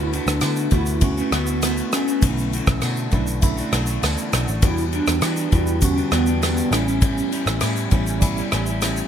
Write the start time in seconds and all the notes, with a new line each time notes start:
Already playing: D2 D3 A3 B3 E4 F#4
0.13 D3 A3 B3 D4 F#4, ride, shaker
0.27 D2, cross-stick, shaker
0.41 D3 A3 B3 F#4, cross-stick, ride, tambourine, shaker
0.56 shaker
0.71 D2 D3 A3 B3 E4 F#4, kick, ride, shaker
0.86 shaker
1.01 A3 B3 C#4 E4 F#4, kick, ride, shaker
1.18 A3 B3 F#4, shaker
1.32 D2 D3 A3 B3 F#4, cross-stick, ride, shaker
1.47 B3 F#4, shaker
1.51 A3
1.62 D3 A3 B3 F#4, cross-stick, ride, tambourine, shaker
1.77 shaker
1.92 D3 A3 B3 C#4 F#4, cross-stick, ride, shaker
2.08 A3 B3 F#4, shaker
2.21 B1 B2 D3 E3 A3 C#4 D#4 F#4, kick, ride, shaker
2.30 E4
2.38 shaker
2.53 E3 A3 F#4, ride, shaker
2.67 B1, kick, cross-stick, shaker
2.81 B2 E3 A3 D4 F#4, cross-stick, ride, tambourine, shaker
2.97 shaker
3.11 B1 E3 A3 C#4 D4 E4, kick, ride, shaker
3.15 F#4
3.27 shaker
3.41 A3 C#4 D4 E4, kick, ride, shaker
3.57 A3 D4 F#4, shaker
3.72 B1 E3 A3 D4 F#4, cross-stick, ride, shaker
3.86 A3 D4 F#4, shaker
4.01 D2 B2 E3 A3 D4 F#4, cross-stick, ride, tambourine, shaker
4.18 shaker
4.31 B1 E3 A3 D4 F#4, cross-stick, ride, shaker
4.47 A1 A3 D4 F#4, shaker
4.62 E2 E3 G3 B3 D4 F#4 G4, kick, ride, shaker
4.66 E4
4.78 shaker
4.91 E3 B3 D4 G4, ride, shaker
5.07 E2, cross-stick, shaker
5.21 E3 B3 D4 G4, cross-stick, ride, tambourine, shaker
5.37 shaker
5.51 E2 E3 G3 B3 D4 E4 F#4 G4, kick, ride, shaker
5.67 shaker
5.81 D3 G3 B3 C#4 F#4, kick, ride, shaker
5.96 B3 D4 G4, shaker
6.10 E2 E3 B3 D4 G4, cross-stick, ride, shaker
6.27 B3 D4 G4, shaker
6.41 E3 B3 D4 G4, cross-stick, ride, tambourine, shaker
6.57 shaker
6.71 A1 E3 G3 B3 C#4 E4, cross-stick, ride, shaker
6.86 G3 C#4 E4, shaker
7.01 A2 E3 G3 C#4 E4, kick, ride, shaker
7.18 shaker
7.31 E3 G3 C#4 E4, ride, shaker
7.46 A1, cross-stick, shaker
7.61 A2 E3 G3 C#4 E4, cross-stick, ride, tambourine, shaker
7.76 shaker
7.90 A1 E3 G3 B3 C#4 E4, kick, ride, shaker
7.94 E4
8.07 shaker
8.20 G3 B3 C#4 E4, kick, ride, shaker
8.36 G3 C#4 E4, shaker
8.52 A1 E3 G3 C#4 E4, cross-stick, ride, shaker
8.66 C#4 E4, shaker
8.70 G3
8.82 A2 E3 G3 C#4 E4, cross-stick, ride, tambourine, shaker
8.97 shaker